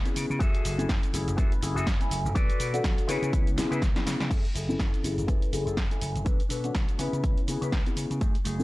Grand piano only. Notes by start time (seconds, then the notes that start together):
0.05 B3 C#4 E4 G#4
0.78 A3 C#4 E4 G#5
1.13 A3 C#4 E4 G#4
1.38 A3 B4
1.62 A3 C#4 E4 G#4
2.00 A3 C#4 E4 G#5
2.73 A3 D4 F#4
3.08 B3 C#4 E4 G#4
3.33 B3 C#4 E4 C#5
3.57 B3 C#4 E4 G#4
3.95 B3 C#4 E4 G#4
4.68 A3 C#4 E4 G#5
5.03 A3 C#4 E4 G#4
5.28 A3 C#4 E4 B4
5.52 A3 C#4 E4 G#4
5.90 A3 C#4 E4 G#5
6.64 A3 D4 F#4 C#5
6.99 B3 C#4 E4 G#4
7.23 B3 C#4 E4 C#5
7.48 B3 C#4 E4 G#4
7.86 B3 C#4 E4 G#4
8.59 A3 C#4 E4 G#4